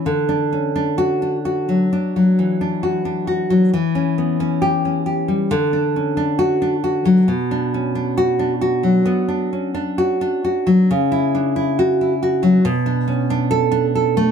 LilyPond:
\new Staff \with { instrumentName = "Nylon-string guitar" } { \time 4/4 \key d \major \tempo 4 = 67 << { r4 fis'8 r2 r8 | r4 g'8 r4. fis'8 r8 | r4 fis'8 r2 r8 | r4 fis'8 r4. a'8 r8 | } \\ { d16 d'16 cis'16 d'8 d'16 fis'16 fis16 d'16 fis16 e16 d'16 fis'16 d'16 fis'16 fis16 | e16 cis'16 b16 cis'8 cis'16 g'16 g16 d16 d'16 cis'16 d'8 d'16 fis'16 fis16 | b,16 d'16 cis'16 d'8 d'16 fis'16 fis16 b16 d'16 cis'16 d'16 fis'16 d'16 fis'16 fis16 | cis16 e'16 d'16 e'8 e'16 fis'16 fis16 b,16 d'16 cis'16 d'8 d'16 a'16 a16 | } >> }